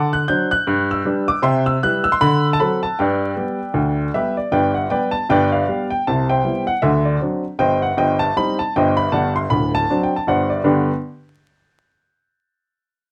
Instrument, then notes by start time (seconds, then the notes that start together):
upright piano
Already playing: D3 F#5 A5
0.13 F#6
0.28 F#3 D4 C5 G6
0.51 F#6
0.67 G2
0.91 E6
1.05 G3 D4 B4
1.28 D6
1.42 C3 E5 G5 C6
1.66 E6
1.83 G3 E4 B4 F#6
2.04 E6
2.12 C6
2.21 D3 B5
2.53 A5
2.60 F#3 C4 A4 B5
2.83 A5
2.99 G2 B4 D5 G5
3.36 G3 B3 G4
3.74 D2
4.14 G3 B3 G4 B4 E5
4.37 D5
4.52 G1 G2 B4 D5 G5
4.74 F#5
4.90 G3 B3 G4 B4 D5 G5
5.11 A5
5.29 G1 G2 B4 D5 G5
5.52 B4 D5 F5
5.68 G3 B3 G4
5.90 G5
6.07 C2 C3 A5
6.29 C5 E5 G5
6.43 G3 B3 E4
6.67 F#5
6.82 D2 D3 E5
7.05 D5
7.21 F#3 C4 D4
7.59 G1 G2 C5 D#5 G5
7.82 F#5
7.97 G1 G2 C5 D#5 G5
8.19 A5
8.37 G3 C4 D#4 B5
8.59 A5
8.76 G1 G2 C5 D#5 G5
8.97 B5
9.12 G1 G2 D5 F#5 A5
9.36 C6
9.50 D1 D2 B5
9.75 A5
9.90 F#3 C4 D4
10.03 G5
10.16 A5
10.27 G1 G2 C5 D5 F#5
10.50 D5
10.64 G2 D3 B3 D4 G4 B4 G5